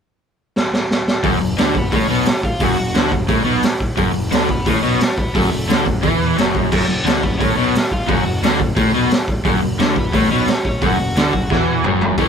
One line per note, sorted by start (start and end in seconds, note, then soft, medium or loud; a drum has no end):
0.56 snare medium
0.73 snare medium
0.91 snare medium
1.08 snare loud
1.23 1.40 F#1 loud
1.23 1.40 F#2 loud
1.23 kick loud
1.23 open hi-hat medium
1.41 1.57 F#1 medium
1.41 1.55 F#2 medium
1.57 1.74 D2 medium
1.57 1.75 D3 loud
1.57 1.75 A3 medium
1.57 1.77 A4 medium
1.57 snare loud
1.57 open hi-hat medium
1.75 1.91 F#1 medium
1.75 1.89 F#2 medium
1.75 1.93 B3 medium
1.75 1.94 B4 medium
1.75 kick medium
1.92 2.08 A1 medium
1.92 2.09 A2 medium
1.92 2.09 C#5 medium
1.92 kick loud
1.92 open hi-hat medium
1.96 2.09 C#4 medium
2.09 2.25 B1 loud
2.09 2.26 B2 loud
2.09 2.42 C#4 medium
2.09 2.45 C#5 medium
2.25 snare loud
2.25 open hi-hat medium
2.43 2.61 F4 medium
2.43 2.64 F5 loud
2.43 kick medium
2.60 2.76 F#1 loud
2.60 2.78 F#2 loud
2.60 3.10 F#4 medium
2.60 kick loud
2.60 open hi-hat medium
2.64 3.14 F#5 medium
2.78 2.94 F#1 medium
2.78 2.92 F#2 medium
2.94 3.11 D2 medium
2.94 3.11 D3 loud
2.94 snare loud
2.94 open hi-hat medium
3.11 3.28 F#1 medium
3.11 3.26 F#2 medium
3.11 kick medium
3.28 3.44 A1 medium
3.28 3.44 A2 loud
3.28 kick loud
3.28 open hi-hat medium
3.45 3.62 B1 loud
3.45 3.62 B2 loud
3.63 snare loud
3.63 open hi-hat medium
3.80 kick medium
3.97 4.14 F#1 loud
3.97 4.13 F#2 loud
3.97 kick loud
3.97 open hi-hat medium
4.14 4.31 F#1 medium
4.14 4.28 F#2 medium
4.31 4.48 D2 loud
4.31 4.48 D3 medium
4.31 4.48 A3 medium
4.31 4.50 A4 loud
4.31 snare loud
4.31 open hi-hat medium
4.49 4.65 F#1 medium
4.49 4.63 F#2 medium
4.49 4.66 B3 medium
4.49 4.68 B4 medium
4.49 kick medium
4.66 4.82 A1 medium
4.66 4.82 A2 loud
4.66 4.82 C#4 medium
4.66 4.83 C#5 loud
4.66 kick loud
4.66 open hi-hat medium
4.83 4.99 B1 loud
4.83 5.00 B2 loud
4.83 5.15 C#4 medium
4.83 5.18 C#5 loud
5.00 snare loud
5.00 open hi-hat medium
5.18 5.34 B3 medium
5.18 5.35 B4 medium
5.18 kick medium
5.34 5.51 F#1 medium
5.34 5.50 F#2 loud
5.34 5.82 A3 medium
5.34 5.86 A4 medium
5.34 kick loud
5.34 open hi-hat medium
5.51 5.68 F#1 medium
5.51 5.65 F#2 medium
5.69 5.85 D2 loud
5.69 5.85 D3 loud
5.69 snare loud
5.69 open hi-hat medium
5.86 6.02 F#1 medium
5.86 6.00 F#2 medium
5.86 kick medium
6.02 6.35 E2 medium
6.02 6.37 E3 loud
6.02 kick loud
6.02 open hi-hat medium
6.37 6.69 F#1 medium
6.37 6.70 F#2 loud
6.37 snare loud
6.37 open hi-hat medium
6.55 kick medium
6.71 6.88 F#1 medium
6.71 6.87 F#2 loud
6.71 kick loud
6.71 crash loud
6.88 7.04 F#1 medium
6.88 7.02 F#2 medium
7.05 7.22 D2 loud
7.05 7.22 D3 loud
7.05 7.22 A3 medium
7.05 7.23 A4 medium
7.05 snare loud
7.05 open hi-hat medium
7.22 7.39 F#1 medium
7.22 7.36 F#2 medium
7.22 7.39 B3 medium
7.22 7.39 B4 medium
7.22 kick medium
7.39 7.56 A1 medium
7.39 7.56 A2 loud
7.39 7.55 C#4 medium
7.39 7.55 C#5 loud
7.39 kick loud
7.39 open hi-hat medium
7.56 7.73 B1 medium
7.56 7.74 B2 loud
7.56 7.89 C#4 medium
7.56 7.88 C#5 medium
7.75 snare loud
7.75 open hi-hat medium
7.92 8.08 F4 medium
7.92 8.10 F5 medium
7.92 kick medium
8.08 8.24 F#1 loud
8.08 8.25 F#2 loud
8.08 8.56 F#4 medium
8.08 8.60 F#5 medium
8.08 kick loud
8.08 open hi-hat medium
8.24 8.41 F#1 medium
8.24 8.39 F#2 medium
8.42 8.58 D2 loud
8.42 8.60 D3 loud
8.42 snare loud
8.42 open hi-hat medium
8.59 8.76 F#1 medium
8.59 8.73 F#2 medium
8.59 kick medium
8.76 8.93 A1 medium
8.76 8.93 A2 loud
8.76 kick loud
8.76 open hi-hat medium
8.94 9.10 B1 loud
8.94 9.11 B2 loud
9.11 snare loud
9.11 open hi-hat medium
9.28 kick medium
9.45 9.61 F#1 medium
9.45 9.62 F#2 loud
9.45 kick loud
9.45 open hi-hat medium
9.63 9.78 F#1 medium
9.63 9.76 F#2 medium
9.79 9.95 D2 loud
9.79 9.96 D3 medium
9.79 9.96 A3 medium
9.79 9.98 A4 medium
9.79 snare loud
9.79 open hi-hat medium
9.96 10.12 F#1 medium
9.96 10.10 F#2 medium
9.96 10.29 B3 medium
9.96 10.32 B4 medium
9.96 kick loud
10.13 10.29 A1 medium
10.13 10.30 A2 loud
10.13 kick loud
10.13 open hi-hat medium
10.30 10.46 B1 loud
10.30 10.48 B2 loud
10.30 10.62 C#4 medium
10.30 10.63 C#5 medium
10.47 snare loud
10.47 open hi-hat medium
10.65 10.81 C#4 medium
10.65 10.84 C#5 loud
10.65 kick medium
10.82 10.98 F#1 medium
10.82 10.99 F#2 loud
10.82 11.81 F#4 medium
10.82 kick loud
10.82 open hi-hat medium
10.87 11.82 F#5 loud
10.99 11.15 F#1 medium
10.99 11.13 F#2 medium
11.16 11.32 D2 medium
11.16 11.33 D3 loud
11.16 snare loud
11.16 open hi-hat medium
11.33 11.49 F#1 medium
11.33 11.47 F#2 medium
11.33 kick medium
11.50 11.82 E2 medium
11.50 11.84 E3 loud
11.50 kick loud
11.50 snare medium
11.84 12.15 F#1 medium
11.84 12.17 F#2 loud
11.84 mid tom loud
12.01 floor tom medium
12.17 12.28 A1 loud
12.17 12.28 A2 loud
12.17 12.28 E3 loud
12.17 12.28 A3 loud
12.17 12.28 C#4 medium
12.17 12.28 E4 loud
12.17 kick loud
12.17 open hi-hat medium